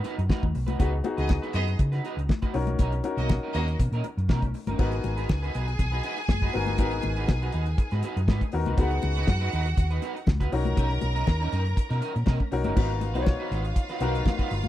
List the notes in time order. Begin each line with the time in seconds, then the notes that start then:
Already playing: B3 D#4 F#4 G#4 A4 A#4
0.03 D#4 F#4 B4, closed hi-hat, muted conga
0.18 F#2, muted clean electric guitar stroke, closed hi-hat
0.29 D#4 F#4 B4, kick, snare, high conga
0.43 D#2, muted clean electric guitar stroke, kick, high conga
0.55 B1, muted clean electric guitar stroke, open hi-hat
0.67 C2 D#4 F#4 B4, closed hi-hat, high conga
0.79 C#2 B3 D#4 F#4 G#4 B4, kick, closed hi-hat, muted conga
0.92 muted clean electric guitar stroke
1.04 B3 D#4 F#4 G#4, muted clean electric guitar stroke, closed hi-hat, muted conga
1.17 C#2 B3 D#4 F#4 G#4 B4 D#5, closed hi-hat
1.29 muted clean electric guitar stroke, kick, snare, high conga
1.42 D#4 F#4 B4, closed hi-hat
1.54 F#2 B3 D#4 F#4 G#4 B4 D#5, closed hi-hat
1.67 muted clean electric guitar stroke, closed hi-hat
1.79 C#3, muted clean electric guitar stroke, kick, closed hi-hat
1.92 D#4 F#4 B4, snare, closed hi-hat
2.04 D#4 F#4 B4, closed hi-hat
2.17 C#2, muted clean electric guitar stroke, closed hi-hat
2.29 muted clean electric guitar stroke, kick, snare, high conga
2.42 D#4 F#4 B4, kick, closed hi-hat, high conga
2.54 B1 C#4 D#4 F#4 A#4, muted clean electric guitar stroke, open hi-hat
2.67 muted clean electric guitar stroke, closed hi-hat, high conga
2.79 B1 C#4 D#4 A#4, kick, closed hi-hat, muted conga
2.92 muted clean electric guitar stroke, closed hi-hat
3.04 C#4 D#4 F#4 A#4, muted clean electric guitar stroke, closed hi-hat, muted conga
3.17 B1 A#3 C#4 D#4 F#4 A#4 D#5, closed hi-hat
3.29 muted clean electric guitar stroke, kick, snare, high conga
3.43 C#4 D#4 A#4
3.54 D#2 A#3 C#4 D#4 F#4 A#4 D#5, closed hi-hat
3.68 muted clean electric guitar stroke, closed hi-hat
3.79 B2, muted clean electric guitar stroke, kick, closed hi-hat, low conga
3.92 A#2 C#4 D#4 A#4, closed hi-hat
4.04 muted clean electric guitar stroke, closed hi-hat, muted conga
4.17 F#2, muted clean electric guitar stroke, closed hi-hat
4.29 B2 C#4 D#4 A#4, kick, snare, high conga
4.42 B1, muted clean electric guitar stroke, kick, closed hi-hat, high conga
4.54 muted clean electric guitar stroke, open hi-hat
4.67 G1 C#4 D#4 A#4, closed hi-hat, high conga
4.78 G#1 B3 D#4 F#4 G#4 A#4 B4 G#5, kick, crash, muted conga
4.92 muted clean electric guitar stroke, closed hi-hat
5.04 G#1, muted clean electric guitar stroke, closed hi-hat, muted conga
5.17 D#4 F#4 B4, closed hi-hat
5.29 C#2, muted clean electric guitar stroke, kick, snare, high conga
5.42 D#4 F#4 B4, closed hi-hat
5.54 B1 D#4 F#4 B4, closed hi-hat
5.67 muted clean electric guitar stroke, closed hi-hat
5.79 B1, muted clean electric guitar stroke, kick, closed hi-hat, low conga
5.92 D#4 F#4 B4, closed hi-hat
6.04 D#4 F#4 B4, closed hi-hat
6.18 muted clean electric guitar stroke, closed hi-hat
6.28 F#1, muted clean electric guitar stroke, kick, snare, high conga
6.42 D#4 F#4 B4, kick
6.53 G1 B3 D#4 F#4 A#4, muted clean electric guitar stroke, open hi-hat
6.66 muted clean electric guitar stroke, closed hi-hat, high conga
6.78 G#1 B3 D#4 F#4 A#4 B4, kick, closed hi-hat, muted conga
6.91 muted clean electric guitar stroke, closed hi-hat
7.02 G#1, muted clean electric guitar stroke, closed hi-hat, muted conga
7.16 D#4 F#4 B4, closed hi-hat
7.28 B1, muted clean electric guitar stroke, kick, snare, high conga
7.42 D#4 F#4 B4, closed hi-hat
7.52 D#2 D#4 F#4 B4, closed hi-hat
7.66 muted clean electric guitar stroke, closed hi-hat
7.78 muted clean electric guitar stroke, kick, closed hi-hat
7.91 G#2 D#4 F#4 B4, snare, closed hi-hat
8.03 D#4 F#4 B4, closed hi-hat, muted conga
8.16 F#2, muted clean electric guitar stroke, closed hi-hat
8.28 G#2 D#4 F#4 B4, kick, snare, high conga
8.41 muted clean electric guitar stroke, kick, closed hi-hat
8.52 D#2 B3 D#4 F#4 A#4, muted clean electric guitar stroke, open hi-hat
8.66 C2 D#4 F#4 B4, closed hi-hat, high conga
8.77 C#2 B3 D#4 F#4 G#4 B4 F#5, kick, closed hi-hat, muted conga
8.91 muted clean electric guitar stroke, closed hi-hat
9.02 C#2, muted clean electric guitar stroke, closed hi-hat, muted conga
9.15 D#4 F#4 B4, closed hi-hat
9.27 F#2, muted clean electric guitar stroke, kick, snare, high conga
9.41 D#4 F#4 B4
9.52 D#2 D#4 F#4 B4, closed hi-hat
9.66 muted clean electric guitar stroke, closed hi-hat
9.77 D#2, muted clean electric guitar stroke, kick, closed hi-hat, low conga
9.90 D#4 F#4 B4, closed hi-hat
10.02 D#4 F#4 B4, closed hi-hat, muted conga
10.15 muted clean electric guitar stroke, closed hi-hat
10.27 C#2, muted clean electric guitar stroke, kick, snare, high conga
10.40 D#4 F#4 B4, kick, closed hi-hat
10.52 B1 C#4 D#4 F#4 A#4 A#5, muted clean electric guitar stroke, open hi-hat
10.65 muted clean electric guitar stroke, closed hi-hat, high conga
10.76 B1 C#4 D#4 A#4, kick, closed hi-hat, muted conga
10.90 muted clean electric guitar stroke, closed hi-hat
11.01 B1, muted clean electric guitar stroke, closed hi-hat, muted conga
11.14 C#4 D#4 A#4, closed hi-hat
11.27 D#2, muted clean electric guitar stroke, kick, snare, high conga
11.40 C#4 D#4 A#4, closed hi-hat
11.51 F#2 C#4 D#4 A#4, closed hi-hat
11.65 muted clean electric guitar stroke, closed hi-hat
11.76 muted clean electric guitar stroke, kick, closed hi-hat
11.89 B2 C#4 D#4 A#4, snare, closed hi-hat
12.01 C#4 D#4 A#4, closed hi-hat
12.14 A#2, muted clean electric guitar stroke, closed hi-hat
12.26 B2 C#4 D#4 A#4, kick, snare, high conga
12.40 muted clean electric guitar stroke, kick
12.51 B1 C#4 D#4 F#4 A#4, muted clean electric guitar stroke, open hi-hat
12.64 G1 C#4 D#4 A#4, closed hi-hat, high conga
12.76 G#1 B3 D#4 F4 F#4 A#4 B4 F5, kick, crash, muted conga
12.90 muted clean electric guitar stroke
13.00 muted clean electric guitar stroke, closed hi-hat, muted conga
13.14 B1 B3 D#4 F#4 B4 C5, closed hi-hat
13.22 C#5, muted clean electric guitar stroke
13.26 kick, snare, high conga
13.39 D#4 F#4 B4
13.51 G#1 D#4 F#4 B4, closed hi-hat
13.65 muted clean electric guitar stroke, closed hi-hat
13.76 muted clean electric guitar stroke, kick, closed hi-hat
13.89 D#4 F#4 B4, snare, closed hi-hat
14.00 B1 B3 D#4 F#4 A#4 B4, closed hi-hat, muted conga
14.15 muted clean electric guitar stroke, closed hi-hat
14.26 muted clean electric guitar stroke, kick, snare, high conga
14.39 D#4 F#4 B4, kick, closed hi-hat
14.50 G1, muted clean electric guitar stroke, open hi-hat
14.64 muted clean electric guitar stroke, closed hi-hat, high conga